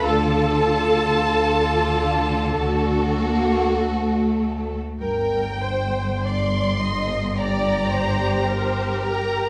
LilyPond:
<<
  \new Staff \with { instrumentName = "Violin section" } { \time 4/4 \key g \minor \tempo 4 = 50 a''2. r4 | g''4 c'''4 bes''4. bes''8 | }
  \new Staff \with { instrumentName = "Viola section" } { \time 4/4 \key g \minor a'2. r4 | r2 d''8 c''8 bes'4 | }
  \new Staff \with { instrumentName = "Violin section" } { \time 4/4 \key g \minor << { a'2 a'2 | bes'8 c''8 d''8 ees''8 d''4 c''8 bes'8 | } \\ { f'2 fis'2 | bes'2 g'2 | } >> }
  \new Staff \with { instrumentName = "Cello section" } { \clef bass \time 4/4 \key g \minor d4 d4. bes8 a4 | g,1 | }
  \new Staff \with { instrumentName = "Double bass section" } { \clef bass \time 4/4 \key g \minor d,2 d,2 | g,,1 | }
>>